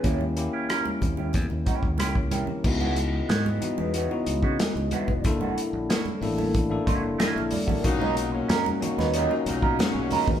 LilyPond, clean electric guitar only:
\new Staff \with { instrumentName = "Clean electric guitar" } { \time 4/4 \key cis \mixolydian \tempo 4 = 92 <cis' e' g'>16 r8 <cis' e' g'>16 <cis' e' ais'>16 r8 <cis' e' g'>16 r8 <cis' e' g'>16 r16 <cis' e' g'>16 r16 <cis' e' g'>16 r16 | r16 <b e' fis'>16 r8 <b e' fis'>16 r8 <b e' gis'>16 <b e' fis'>16 r8 <b e' fis'>16 r8 <b e' fis'>16 r16 | r16 <ais e' fis'>16 r8 <ais e' fis'>16 r8 <ais e' a'>16 r8 <ais e' fis'>16 r16 <ais e' fis'>16 r8 <ais e' fis'>16 | r16 <cis' dis' ais'>16 r8 <cis' dis' ais'>16 r8 <cis' dis' b'>16 <cis' dis' ais'>16 r8 <cis' dis' ais'>16 r8 <cis' dis' ais'>16 r16 | }